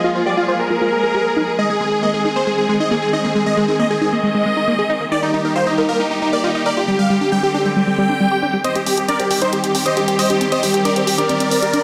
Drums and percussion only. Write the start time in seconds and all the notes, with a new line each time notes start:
8.64 closed hi-hat
8.75 closed hi-hat
8.86 open hi-hat
8.97 closed hi-hat
9.08 closed hi-hat
9.20 closed hi-hat
9.31 open hi-hat
9.42 closed hi-hat
9.53 closed hi-hat
9.64 closed hi-hat
9.75 open hi-hat
9.86 closed hi-hat
9.97 closed hi-hat
10.08 closed hi-hat
10.19 open hi-hat
10.30 closed hi-hat
10.41 closed hi-hat
10.52 closed hi-hat
10.63 open hi-hat
10.74 closed hi-hat
10.85 closed hi-hat
10.96 closed hi-hat
11.07 open hi-hat
11.18 closed hi-hat
11.29 closed hi-hat
11.40 closed hi-hat
11.51 open hi-hat
11.62 closed hi-hat
11.74 closed hi-hat